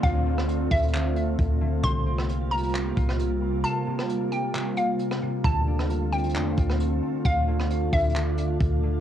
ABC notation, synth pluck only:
X:1
M:4/4
L:1/8
Q:1/4=133
K:Dm
V:1 name="Synth pluck"
f3 e4- e | c'3 b3 z2 | a3 g2 f z2 | a3 g3 z2 |
f3 e4- e |]